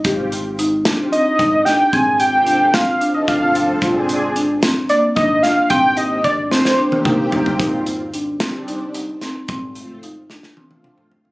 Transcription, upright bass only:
X:1
M:7/8
L:1/8
Q:1/4=111
K:Eb
V:1 name="Upright bass" clef=bass
A,,,4 z A,,, z | A,,,4 z A,,,2 | A,,,4 z A,,, z | A,,,4 z A,,,2 |
A,,,4 z3 | A,,,4 z3 |]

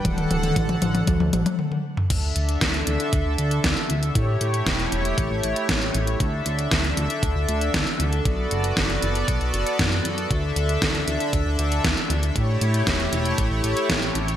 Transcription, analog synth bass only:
X:1
M:4/4
L:1/16
Q:1/4=117
K:Dmix
V:1 name="Analog synth bass" clef=bass
D,,,2 D,,,2 A,,,2 A,,,2 D,, D,, A,,, z4 z | D,,2 D,,2 D,,2 D,, z D,, D,, D,,2 D,, z D,,2 | A,,2 A,,2 E,,,2 E,,,2 A,,, A,,, A,,, z A,,,2 A,,,2 | D,,2 D,,2 D,,2 D,, z D,, D,, D,,2 D,, z D,,2 |
B,,,2 F,,,2 F,,,2 F,,,2 B,,, B,,, F,,, z F,,2 F,,2 | D,,2 D,,2 D,,2 D,, z D,, D,, D,,2 D,, z D,,2 | A,,2 A,,2 E,,,2 E,,,2 A,,, A,,, A,,, z A,,,2 A,,,2 |]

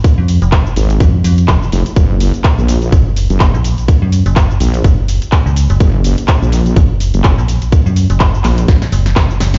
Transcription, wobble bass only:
X:1
M:4/4
L:1/16
Q:"Swing 16ths" 1/4=125
K:Gblyd
V:1 name="Wobble bass" clef=bass
z6 A,,,2 z6 F,,, z | G,,,3 z2 B,,,3 z3 G,,,2 z3 | z6 B,,,2 z8 | G,,,3 z2 B,,,3 z3 G,,,2 z3 |
z6 B,,,2 z8 |]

